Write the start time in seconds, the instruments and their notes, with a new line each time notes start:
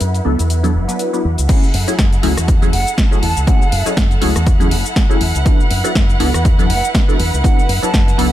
Already playing: violin section E4 B4 F#5
0.00 fingered electric bass F#2, closed hi-hat, shaker
0.14 closed hi-hat, shaker
0.25 fingered electric bass C#2, analog polysynth F#3 B3 D4 E4 A4
0.39 fingered electric bass E2, closed hi-hat, shaker
0.50 closed hi-hat, shaker
0.63 analog polysynth F#3 B3 D4 E4 A4, closed hi-hat, shaker
0.75 fingered electric bass F#1
0.88 analog polysynth F#3 B3 D4 E4 B4, closed hi-hat, shaker
0.99 closed hi-hat, shaker
1.13 analog polysynth F#3 B3 D4 E4 B4, shaker
1.25 fingered electric bass E2
1.38 fingered electric bass C#2, closed hi-hat, shaker
1.49 analog polysynth F#3 A3 C#4 E4 G#4, violin section E4 A4 F#5, kick, closed hi-hat, crash, shaker
1.64 shaker
1.74 fingered electric bass F#2, open hi-hat
1.87 analog polysynth F#3 A3 C#4 E4 G#4, closed hi-hat, shaker
1.99 fingered electric bass F#2, kick, snare, closed hi-hat, shaker
2.13 closed hi-hat, shaker
2.22 fingered electric bass C#2, analog polysynth F#3 A3 C#4 E4 G#4, open hi-hat
2.37 fingered electric bass E2, cross-stick, closed hi-hat, shaker
2.48 kick, closed hi-hat, shaker
2.62 analog polysynth F#3 A3 C#4 E4 G#4, closed hi-hat, shaker
2.73 fingered electric bass F#1, flute F#5, open hi-hat
2.87 closed hi-hat, shaker
2.98 kick, snare, closed hi-hat, shaker
3.11 analog polysynth F#3 A3 C#4 E4 G#4, shaker
3.22 fingered electric bass E2, flute A5, open hi-hat
3.37 fingered electric bass C#2, closed hi-hat, shaker
3.47 analog polysynth F#3 A3 C#4 E4 G#4, flute F#5, kick, closed hi-hat, shaker
3.62 shaker
3.72 fingered electric bass F#2, open hi-hat
3.85 analog polysynth F#3 A3 C#4 E4 G#4, muted fingered electric bass stroke, closed hi-hat, shaker
3.97 fingered electric bass F#2, kick, snare, closed hi-hat, shaker
4.11 closed hi-hat, shaker
4.21 fingered electric bass C#2, analog polysynth F#3 A3 C#4 E4 G#4, open hi-hat
4.36 fingered electric bass E2, cross-stick, closed hi-hat, shaker
4.46 kick, closed hi-hat, shaker
4.60 analog polysynth F#3 A3 C#4 E4 G#4, closed hi-hat, shaker
4.71 fingered electric bass F#1, open hi-hat
4.85 closed hi-hat, shaker
4.96 kick, snare, closed hi-hat, shaker
5.09 analog polysynth F#3 A3 C#4 E4 G#4, shaker
5.21 fingered electric bass E2, open hi-hat
5.35 fingered electric bass C#2, closed hi-hat, shaker
5.45 analog polysynth F#3 B3 D4 E4 A4, violin section B4, kick, closed hi-hat, shaker
5.60 shaker
5.71 fingered electric bass F#2, open hi-hat
5.84 analog polysynth F#3 B3 D4 E4 A4, closed hi-hat, shaker
5.95 fingered electric bass F#2, kick, snare, closed hi-hat, shaker
6.09 closed hi-hat, shaker
6.19 fingered electric bass C#2, analog polysynth F#3 B3 D4 E4 A4, open hi-hat
6.34 fingered electric bass E2, cross-stick, closed hi-hat, shaker
6.45 kick, closed hi-hat, shaker
6.58 analog polysynth F#3 B3 D4 E4 A4, closed hi-hat, shaker
6.70 fingered electric bass F#1, flute F#5, open hi-hat
6.84 closed hi-hat, shaker
6.95 kick, snare, closed hi-hat, shaker
7.08 analog polysynth F#3 B3 D4 E4 A4, shaker
7.19 fingered electric bass E2, open hi-hat
7.33 fingered electric bass C#2, closed hi-hat, shaker
7.44 analog polysynth F#3 B3 D4 E4 A4, flute F#5, kick, closed hi-hat, shaker
7.59 shaker
7.69 fingered electric bass F#2, open hi-hat
7.82 analog polysynth F#3 B3 D4 E4 A4, flute A5, muted fingered electric bass stroke, closed hi-hat, shaker
7.94 fingered electric bass F#2, kick, snare, closed hi-hat, shaker
8.08 closed hi-hat, shaker
8.18 fingered electric bass C#2, analog polysynth F#3 B3 D4 E4 A4, open hi-hat